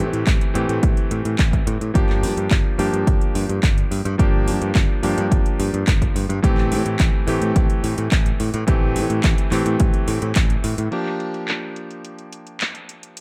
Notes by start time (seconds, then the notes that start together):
Already playing: E3 A3 C4 G4
0.13 A2, closed hi-hat
0.27 A1, kick, clap, closed hi-hat
0.41 closed hi-hat
0.54 A2 E3 A3 C4 G4, closed hi-hat
0.69 A2, closed hi-hat
0.83 A1, kick, closed hi-hat
0.97 closed hi-hat
1.11 A2, closed hi-hat
1.25 A2, closed hi-hat
1.39 A1, kick, clap, closed hi-hat
1.53 kick, closed hi-hat
1.67 A2, closed hi-hat
1.81 A2, closed hi-hat
1.94 G1 F3 A#3 D4 G4, kick, closed hi-hat
2.09 clap
2.23 G2, open hi-hat
2.37 G2, closed hi-hat
2.51 G1, kick, clap, closed hi-hat
2.78 G2 F3 A#3 D4 G4, open hi-hat
2.93 G2, closed hi-hat
3.07 G1, kick, closed hi-hat
3.21 closed hi-hat
3.35 G2, open hi-hat
3.49 G2, closed hi-hat
3.63 G1, kick, clap, closed hi-hat
3.78 closed hi-hat
3.91 G2, open hi-hat
4.05 G2, closed hi-hat
4.18 G1 F3 A#3 D4 G4, kick, closed hi-hat
4.48 G2, open hi-hat
4.62 G2, closed hi-hat
4.75 G1, kick, clap, closed hi-hat
5.03 G2 F3 A#3 D4 G4, open hi-hat
5.18 G2, closed hi-hat
5.32 G1, kick, closed hi-hat
5.46 closed hi-hat
5.60 G2, open hi-hat
5.74 G2, closed hi-hat
5.88 G1, kick, clap, closed hi-hat
6.02 kick, closed hi-hat
6.16 G2, open hi-hat
6.29 G2, closed hi-hat
6.42 A1 E3 A3 C4 G4, kick, closed hi-hat
6.58 clap
6.72 A2, open hi-hat
6.86 A2, closed hi-hat
6.99 A1, kick, clap, closed hi-hat
7.27 A2 E3 A3 C4 G4, open hi-hat
7.42 A2, closed hi-hat
7.56 A1, kick, closed hi-hat
7.70 closed hi-hat
7.84 A2, open hi-hat
7.98 A2, closed hi-hat
8.12 A1, kick, clap, closed hi-hat
8.26 closed hi-hat
8.40 A2, open hi-hat
8.54 A2, closed hi-hat
8.67 A1 E3 A3 C4 G4, kick, closed hi-hat
8.96 A2, open hi-hat
9.10 A2, closed hi-hat
9.24 A1, kick, clap, closed hi-hat
9.38 closed hi-hat
9.51 A2 E3 A3 C4 G4, clap, open hi-hat
9.66 A2, closed hi-hat
9.80 A1, kick, closed hi-hat
9.94 closed hi-hat
10.08 A2, open hi-hat
10.22 A2, closed hi-hat
10.36 A1, kick, clap, closed hi-hat
10.50 closed hi-hat
10.64 A2, open hi-hat
10.78 A2, closed hi-hat
10.91 F3 A#3 D4 G4, closed hi-hat, crash
11.06 clap
11.20 closed hi-hat
11.34 closed hi-hat
11.48 clap, closed hi-hat
11.76 closed hi-hat
11.91 closed hi-hat
12.05 closed hi-hat
12.19 closed hi-hat
12.32 closed hi-hat
12.47 closed hi-hat
12.61 clap, closed hi-hat
12.75 closed hi-hat
12.89 closed hi-hat
13.03 closed hi-hat
13.17 closed hi-hat